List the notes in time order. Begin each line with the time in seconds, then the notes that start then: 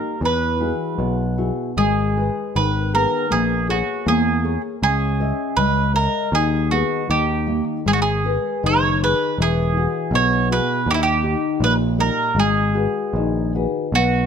Already playing: A#3 D#4 G4 A#4
0.21 E2 E3
0.25 B4
0.60 E4 F#4 G#4
0.98 B1 B2
1.38 E4 F#4 G#4
1.77 G#1 G#3 G#4
2.16 G#4 B4
2.55 G#1 D#3 B4
2.94 B3 G#4 A#4
3.30 A#1 A#3 G#4
3.69 F#4 G#4 A#4 C#5
4.06 E2 A#3 G#4
4.44 G#4 A#4 C#5
4.83 C#2 C#4 G#4
5.20 C#5 D#5 E5
5.57 C#2 G#3 B4
5.94 A#4 C#5 D#5 E5
6.32 D#2 D#3 G#4
6.71 B3 D#4 F#4 G#4
7.10 D#2 D#3 G4
7.46 A#3 D#4 G4
7.86 G#1 G#3 G#4
7.93 F#4
8.02 G#4
8.25 G#4 A#4 B4
8.63 F#1 D#3 C#5
9.03 G#4 B4
9.38 E1 E3 G#4
9.77 E4 F#4 G#4
10.11 B1 B2
10.15 C#5
10.50 E4 F#4 G#4 B4
10.86 D#2 D#3
10.91 E4 G4
11.03 G4
11.23 D#4 G4
11.60 A#1 A#2 B4
11.98 D#4 G4 A#4
12.35 G#1 G#3
12.39 G#4
12.74 F#4 G#4 B4
13.13 A#1 D#3
13.55 F#4 G#4 B4
13.92 B1 B3 F#4